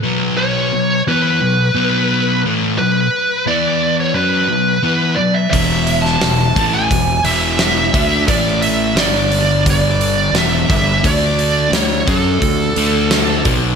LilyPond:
<<
  \new Staff \with { instrumentName = "Lead electric guitar" } { \time 4/4 \key b \dorian \tempo 4 = 87 r8 cis''4 b'2 r8 | b'4 d''8. cis''16 b'4. d''16 e''16 | e''8. a''4 gis''8. e''4. | d''8 e''8 d''4 d''4 e''4 |
d''4 cis''8 a'2 r8 | }
  \new Staff \with { instrumentName = "Distorted electric guitar" } { \clef bass \time 4/4 \key b \dorian <b, fis b>4 <b, fis>8 <e b e'>8 <b, fis>8 <b, fis b>4 <a, e a>8 | <b, fis>8 r8 <e b e'>4 <fis cis' fis'>8 <b, fis>8 <e b e'>8 <b, fis>8 | <e, b, e>4 <e, b,>8 <a, e a>8 <e, b,>8 <e, b, e>4 <d a d'>8 | <a, e a>4 <g, d g>2 <e, b, e>8 <g, d g>8 |
<d a d'>4 <d a>8 <fis cis' fis'>8 <d a>8 <d a d'>4 <b, fis b>8 | }
  \new Staff \with { instrumentName = "Fingered electric bass" } { \clef bass \time 4/4 \key b \dorian r1 | r1 | e,,4 e,,8 a,,8 e,,8 e,,4 d,8 | a,,4 g,,2 e,,8 g,,8 |
d,4 d,8 fis,8 d,8 d,4 b,,8 | }
  \new DrumStaff \with { instrumentName = "Drums" } \drummode { \time 4/4 r4 r4 r4 r4 | r4 r4 r4 r4 | <hho bd>8 hho16 sn16 <hho sn>8 <hho bd>8 <hho bd>8 hho8 <hho sn>8 <hho bd>8 | <hho bd>8 hho8 <hho sn>8 hho8 <hho bd>8 hho8 <hho sn>8 <hho bd>8 |
<hho bd>8 hho8 <hho sn>8 <hho bd>8 <hho bd>8 hho8 <hho sn>8 <hho bd>8 | }
>>